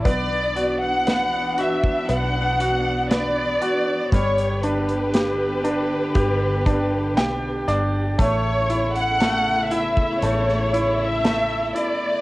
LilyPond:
<<
  \new Staff \with { instrumentName = "Violin section" } { \time 4/4 \key g \lydian \tempo 4 = 59 d''8. fis''8. e''8 fis''4 d''4 | cis''8 b'2. r8 | cis''8. fis''8. e''8 cis''8. e''8. d''8 | }
  \new Staff \with { instrumentName = "Upright piano" } { \time 4/4 \key g \lydian b8 fis'8 b8 fis'8 b8 fis'8 b8 fis'8 | g8 d'8 g'8 d'8 g'8 d'8 <g' g''>8 <d' d''>8 | a8 e'8 a8 e'8 a8 e'8 a8 e'8 | }
  \new Staff \with { instrumentName = "String section" } { \time 4/4 \key g \lydian << { <e d'>1 | <d g'>1 | <cis e'>1 | } \\ { b1~ | b1 | a1 | } >> }
  \new Staff \with { instrumentName = "Fingered electric bass" } { \clef bass \time 4/4 \key g \lydian b,,2 b,,4. r8 | g,,2 g,,4 b,,8 g,,8 | a,,2 a,,4. r8 | }
  \new DrumStaff \with { instrumentName = "Drums" } \drummode { \time 4/4 <hh bd>8 hh8 <hh sn>8 hh16 bd16 hh8 hh8 <hh sn>8 hh8 | <hh bd>16 hh16 hh16 hh16 <hh sn>8 hh8 <hh bd>8 <hh bd>8 <hh sn>8 hh8 | <hh bd>8 hh16 hh16 <hh sn>8 hh16 bd16 hh16 sn16 hh8 <hh sn>8 hh8 | }
>>